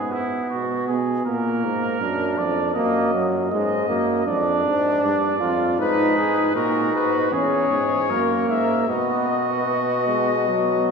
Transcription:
0.00 0.24 G#2 medium
0.00 0.97 B3 medium
0.00 0.14 G#4 medium
0.12 0.49 E4 medium
0.50 0.86 B2 medium
0.50 0.87 F#4 medium
0.87 1.25 B2 medium
0.87 1.25 G#4 medium
1.25 1.65 A#2 medium
1.25 1.98 A#3 medium
1.25 2.39 A#4 medium
1.64 2.00 G#2 medium
2.00 2.38 F#2 medium
2.00 2.75 D4 medium
2.38 2.76 F2 medium
2.38 2.74 D5 medium
2.74 3.51 F#2 medium
2.74 3.13 A#3 medium
2.74 3.24 D#5 medium
3.15 3.51 F#3 medium
3.51 3.89 G#2 medium
3.51 3.89 G#3 medium
3.51 4.24 D#5 medium
3.89 4.26 F#2 medium
3.89 4.26 A#3 medium
4.27 4.65 F2 medium
4.27 5.39 D4 medium
4.27 5.02 D5 medium
4.66 5.05 G#2 medium
5.03 5.41 G2 medium
5.03 5.79 D5 medium
5.40 5.78 F2 medium
5.40 5.78 F4 medium
5.79 6.54 G#2 medium
5.79 6.55 D#4 medium
5.79 6.15 B4 medium
5.79 6.55 B4 medium
6.18 6.55 G#4 medium
6.55 6.93 A#2 medium
6.55 7.31 D#4 medium
6.55 7.34 F#4 medium
6.55 6.93 A#4 medium
6.94 7.31 G#2 medium
6.94 7.32 B4 medium
7.31 7.69 E2 medium
7.31 7.81 C#4 medium
7.31 8.12 G#4 medium
7.31 8.47 C#5 medium
7.70 8.11 G#2 medium
8.09 8.48 F#2 medium
8.09 8.84 A#3 medium
8.09 8.88 A#4 medium
8.49 8.87 G#2 medium
8.49 8.91 E5 medium
8.87 10.91 B2 medium
8.87 9.67 B3 medium
8.87 10.91 F#4 medium
8.87 10.91 D#5 medium
9.67 10.07 B3 medium
10.08 10.50 G#3 medium
10.48 10.91 F#3 medium

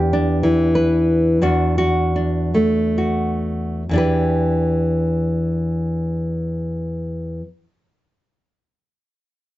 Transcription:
0.00 1.40 E2 medium
0.00 0.13 D4 medium
0.00 1.38 G4 soft
0.00 0.74 B4 medium
0.13 1.42 D4 medium
0.43 1.42 E3 medium
0.75 1.38 B4 soft
1.42 3.88 E2 medium
1.42 2.15 D4 medium
1.42 1.77 F#4 medium
1.78 2.97 F#4 medium
2.16 3.83 D4 soft
2.54 3.82 A3 soft
2.98 3.83 F#4 soft
3.89 7.39 E2 medium
3.89 7.41 E3 soft
3.93 7.43 D4 soft
3.93 7.46 G4 soft
3.98 7.48 B4 soft

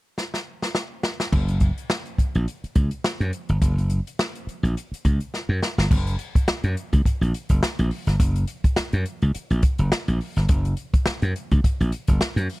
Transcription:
0.18 snare medium
0.34 snare soft
0.62 snare medium
0.75 snare medium
1.03 snare medium
1.20 snare medium
1.32 1.69 F#1 loud
1.32 kick medium
1.32 crash medium
1.48 closed hi-hat medium
1.60 kick medium
1.60 closed hi-hat medium
1.78 closed hi-hat medium
1.90 snare loud
2.05 closed hi-hat soft
2.18 muted slap bass stroke soft
2.18 kick medium
2.18 closed hi-hat medium
2.35 2.45 A#1 medium
2.35 closed hi-hat soft
2.48 closed hi-hat medium
2.64 muted slap bass stroke soft
2.64 closed hi-hat soft
2.75 2.89 C#2 medium
2.75 kick medium
2.75 closed hi-hat medium
2.91 closed hi-hat medium
3.04 snare loud
3.20 3.31 F#2 loud
3.20 closed hi-hat soft
3.33 closed hi-hat medium
3.49 3.60 G1 medium
3.49 closed hi-hat soft
3.62 3.99 F#1 loud
3.62 kick loud
3.62 closed hi-hat medium
3.78 closed hi-hat medium
3.90 closed hi-hat medium
4.07 closed hi-hat medium
4.19 snare loud
4.35 closed hi-hat soft
4.47 muted slap bass stroke soft
4.47 closed hi-hat medium
4.63 4.74 A#1 medium
4.63 closed hi-hat soft
4.77 closed hi-hat medium
4.92 muted slap bass stroke soft
4.92 closed hi-hat medium
5.05 5.18 C#2 medium
5.05 kick medium
5.05 closed hi-hat medium
5.20 closed hi-hat medium
5.34 snare medium
5.49 5.60 F#2 loud
5.62 snare medium
5.78 5.88 G1 medium
5.78 snare medium
5.91 6.15 F#1 loud
5.91 kick loud
5.91 crash loud
6.07 closed hi-hat medium
6.19 closed hi-hat medium
6.35 muted slap bass stroke soft
6.35 kick medium
6.35 closed hi-hat medium
6.48 muted slap bass stroke soft
6.48 snare loud
6.64 6.74 F#2 medium
6.64 closed hi-hat soft
6.77 closed hi-hat medium
6.93 7.03 C#2 medium
6.93 kick medium
6.93 closed hi-hat medium
7.05 kick medium
7.05 closed hi-hat medium
7.21 7.32 A#1 medium
7.21 closed hi-hat soft
7.34 closed hi-hat medium
7.49 7.60 F#1 medium
7.49 kick medium
7.49 closed hi-hat medium
7.63 muted slap bass stroke soft
7.63 snare loud
7.79 7.89 A#1 loud
7.79 closed hi-hat soft
7.91 open hi-hat medium
8.07 8.18 G1 medium
8.07 snare soft
8.07 closed hi-hat medium
8.20 8.44 F#1 medium
8.20 kick loud
8.20 closed hi-hat loud
8.36 closed hi-hat medium
8.47 closed hi-hat medium
8.64 muted slap bass stroke soft
8.64 kick medium
8.64 closed hi-hat medium
8.76 muted slap bass stroke soft
8.76 snare loud
8.93 9.04 F#2 medium
8.93 closed hi-hat soft
9.06 closed hi-hat medium
9.22 9.33 C#2 medium
9.22 closed hi-hat soft
9.35 muted slap bass stroke soft
9.35 closed hi-hat medium
9.50 9.61 A#1 medium
9.50 closed hi-hat soft
9.62 kick loud
9.62 closed hi-hat medium
9.78 9.89 F#1 medium
9.78 closed hi-hat medium
9.92 muted slap bass stroke medium
9.92 snare loud
10.08 10.18 A#1 loud
10.08 closed hi-hat soft
10.21 open hi-hat medium
10.36 10.47 G1 medium
10.36 snare soft
10.36 closed hi-hat medium
10.49 10.73 F#1 loud
10.49 kick loud
10.49 closed hi-hat medium
10.65 closed hi-hat medium
10.77 closed hi-hat medium
10.93 muted slap bass stroke soft
10.93 kick loud
10.93 closed hi-hat medium
11.06 muted slap bass stroke soft
11.06 snare loud
11.22 11.33 F#2 loud
11.22 closed hi-hat soft
11.36 closed hi-hat medium
11.51 11.62 C#2 medium
11.51 kick medium
11.51 closed hi-hat soft
11.64 kick medium
11.64 closed hi-hat medium
11.80 11.91 A#1 medium
11.80 closed hi-hat soft
11.92 closed hi-hat medium
12.07 12.19 F#1 medium
12.07 kick medium
12.07 closed hi-hat medium
12.21 snare loud
12.36 12.47 F#2 loud
12.36 closed hi-hat soft
12.49 open hi-hat medium

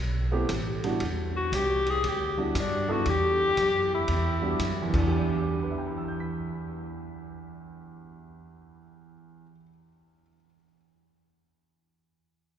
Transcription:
0.00 0.48 B1 medium
0.32 0.48 A3 medium
0.32 0.48 B3 medium
0.32 0.48 C4 medium
0.32 0.48 E4 medium
0.32 0.48 G4 medium
0.49 0.99 A1 medium
0.49 kick soft
0.49 hi-hat pedal medium
0.49 ride medium
0.84 1.00 G3 medium
0.84 1.00 B3 medium
0.84 1.00 D4 medium
0.84 1.00 E4 medium
0.84 1.00 F#4 medium
0.84 ride soft
1.00 1.51 E2 medium
1.00 kick soft
1.00 ride medium
1.36 1.57 F#4 medium
1.52 2.02 C2 loud
1.52 1.91 G4 medium
1.52 kick soft
1.52 hi-hat pedal medium
1.52 ride medium
1.86 2.09 G#4 loud
1.86 ride soft
2.04 2.54 D2 medium
2.04 kick soft
2.04 ride medium
2.08 2.40 G4 medium
2.37 2.53 G3 medium
2.37 2.53 B3 medium
2.37 2.53 D4 medium
2.37 2.54 E4 medium
2.37 2.54 F#4 medium
2.42 2.58 B3 medium
2.55 3.05 G2 loud
2.55 kick soft
2.55 hi-hat pedal medium
2.55 ride medium
2.59 2.93 D4 medium
2.88 3.04 G3 medium
2.88 3.04 B3 medium
2.88 3.05 D4 medium
2.88 3.05 E4 medium
2.88 3.11 F#4 medium
2.88 3.05 A4 medium
3.06 3.56 E2 medium
3.06 3.94 G4 loud
3.06 kick soft
3.06 ride medium
3.57 4.07 F#2 medium
3.57 kick soft
3.57 hi-hat pedal medium
3.57 ride medium
3.94 5.00 E4 medium
4.08 4.58 E2 medium
4.08 kick soft
4.08 ride medium
4.42 4.58 G3 medium
4.42 4.58 B3 medium
4.42 4.58 D4 medium
4.42 4.58 E4 medium
4.42 4.59 F#4 medium
4.59 4.93 F#2 loud
4.59 kick soft
4.59 hi-hat pedal medium
4.59 ride medium
4.82 9.43 E2 medium
4.89 9.50 E3 medium
4.93 9.50 E2 medium
4.93 9.55 D4 medium
4.93 kick medium
4.93 crash medium
5.01 9.62 E4 medium
5.07 9.68 G4 medium
5.63 10.20 B4 soft
5.70 10.27 E5 soft
5.78 10.35 G5 soft
5.87 10.44 B5 soft
5.98 10.55 E6 soft
6.08 10.65 G6 soft
6.20 10.77 B6 soft

